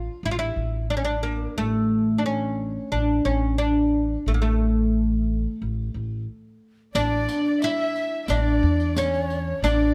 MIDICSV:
0, 0, Header, 1, 6, 480
1, 0, Start_track
1, 0, Tempo, 671892
1, 1128, Time_signature, 4, 2, 24, 8
1, 7102, End_track
2, 0, Start_track
2, 0, Title_t, "Ney"
2, 0, Program_c, 0, 77
2, 4959, Note_on_c, 0, 74, 93
2, 5298, Note_off_c, 0, 74, 0
2, 5323, Note_on_c, 0, 74, 78
2, 5444, Note_on_c, 0, 76, 82
2, 5454, Note_off_c, 0, 74, 0
2, 5915, Note_on_c, 0, 74, 78
2, 5926, Note_off_c, 0, 76, 0
2, 6403, Note_on_c, 0, 73, 91
2, 6414, Note_off_c, 0, 74, 0
2, 6881, Note_off_c, 0, 73, 0
2, 6885, Note_on_c, 0, 74, 96
2, 7102, Note_off_c, 0, 74, 0
2, 7102, End_track
3, 0, Start_track
3, 0, Title_t, "Violin section"
3, 0, Program_c, 1, 48
3, 4971, Note_on_c, 1, 74, 81
3, 5420, Note_off_c, 1, 74, 0
3, 5453, Note_on_c, 1, 76, 101
3, 5870, Note_off_c, 1, 76, 0
3, 5879, Note_on_c, 1, 76, 62
3, 5928, Note_off_c, 1, 76, 0
3, 5929, Note_on_c, 1, 74, 76
3, 6404, Note_on_c, 1, 73, 75
3, 6408, Note_off_c, 1, 74, 0
3, 6885, Note_off_c, 1, 73, 0
3, 6889, Note_on_c, 1, 74, 72
3, 7102, Note_off_c, 1, 74, 0
3, 7102, End_track
4, 0, Start_track
4, 0, Title_t, "Oud"
4, 0, Program_c, 2, 24
4, 0, Note_on_c, 2, 65, 89
4, 142, Note_off_c, 2, 65, 0
4, 182, Note_on_c, 2, 64, 79
4, 221, Note_off_c, 2, 64, 0
4, 224, Note_on_c, 2, 65, 68
4, 270, Note_off_c, 2, 65, 0
4, 277, Note_on_c, 2, 64, 80
4, 642, Note_off_c, 2, 64, 0
4, 645, Note_on_c, 2, 62, 77
4, 688, Note_off_c, 2, 62, 0
4, 691, Note_on_c, 2, 61, 67
4, 744, Note_off_c, 2, 61, 0
4, 747, Note_on_c, 2, 62, 77
4, 878, Note_off_c, 2, 62, 0
4, 878, Note_on_c, 2, 58, 67
4, 1106, Note_off_c, 2, 58, 0
4, 1126, Note_on_c, 2, 57, 83
4, 1560, Note_on_c, 2, 62, 54
4, 1571, Note_off_c, 2, 57, 0
4, 1609, Note_off_c, 2, 62, 0
4, 1612, Note_on_c, 2, 61, 76
4, 2082, Note_off_c, 2, 61, 0
4, 2085, Note_on_c, 2, 62, 74
4, 2320, Note_off_c, 2, 62, 0
4, 2323, Note_on_c, 2, 61, 76
4, 2557, Note_off_c, 2, 61, 0
4, 2559, Note_on_c, 2, 62, 77
4, 3016, Note_off_c, 2, 62, 0
4, 3056, Note_on_c, 2, 57, 74
4, 3099, Note_off_c, 2, 57, 0
4, 3102, Note_on_c, 2, 58, 55
4, 3150, Note_off_c, 2, 58, 0
4, 3156, Note_on_c, 2, 57, 66
4, 4464, Note_off_c, 2, 57, 0
4, 4968, Note_on_c, 2, 62, 99
4, 5455, Note_off_c, 2, 62, 0
4, 5458, Note_on_c, 2, 64, 96
4, 5926, Note_off_c, 2, 64, 0
4, 5929, Note_on_c, 2, 62, 85
4, 6410, Note_off_c, 2, 62, 0
4, 6413, Note_on_c, 2, 61, 89
4, 6882, Note_off_c, 2, 61, 0
4, 6885, Note_on_c, 2, 62, 96
4, 7102, Note_off_c, 2, 62, 0
4, 7102, End_track
5, 0, Start_track
5, 0, Title_t, "Upright bass"
5, 0, Program_c, 3, 32
5, 165, Note_on_c, 3, 33, 75
5, 377, Note_off_c, 3, 33, 0
5, 401, Note_on_c, 3, 33, 63
5, 1038, Note_off_c, 3, 33, 0
5, 1124, Note_on_c, 3, 33, 75
5, 1971, Note_off_c, 3, 33, 0
5, 2085, Note_on_c, 3, 33, 83
5, 2298, Note_off_c, 3, 33, 0
5, 2322, Note_on_c, 3, 33, 68
5, 2959, Note_off_c, 3, 33, 0
5, 3045, Note_on_c, 3, 33, 72
5, 3891, Note_off_c, 3, 33, 0
5, 4012, Note_on_c, 3, 33, 76
5, 4222, Note_off_c, 3, 33, 0
5, 4246, Note_on_c, 3, 33, 67
5, 4458, Note_off_c, 3, 33, 0
5, 4964, Note_on_c, 3, 33, 90
5, 5176, Note_off_c, 3, 33, 0
5, 5922, Note_on_c, 3, 33, 94
5, 6135, Note_off_c, 3, 33, 0
5, 6164, Note_on_c, 3, 40, 87
5, 6798, Note_off_c, 3, 40, 0
5, 6875, Note_on_c, 3, 33, 83
5, 7091, Note_off_c, 3, 33, 0
5, 7102, End_track
6, 0, Start_track
6, 0, Title_t, "Riq"
6, 4965, Note_on_c, 9, 54, 51
6, 5036, Note_off_c, 9, 54, 0
6, 5205, Note_on_c, 9, 54, 45
6, 5277, Note_off_c, 9, 54, 0
6, 5443, Note_on_c, 9, 54, 47
6, 5515, Note_off_c, 9, 54, 0
6, 5684, Note_on_c, 9, 54, 18
6, 5756, Note_off_c, 9, 54, 0
6, 5917, Note_on_c, 9, 54, 56
6, 5988, Note_off_c, 9, 54, 0
6, 6285, Note_on_c, 9, 54, 18
6, 6357, Note_off_c, 9, 54, 0
6, 6405, Note_on_c, 9, 54, 58
6, 6476, Note_off_c, 9, 54, 0
6, 6527, Note_on_c, 9, 54, 15
6, 6598, Note_off_c, 9, 54, 0
6, 6645, Note_on_c, 9, 54, 17
6, 6717, Note_off_c, 9, 54, 0
6, 6890, Note_on_c, 9, 54, 61
6, 6962, Note_off_c, 9, 54, 0
6, 7102, End_track
0, 0, End_of_file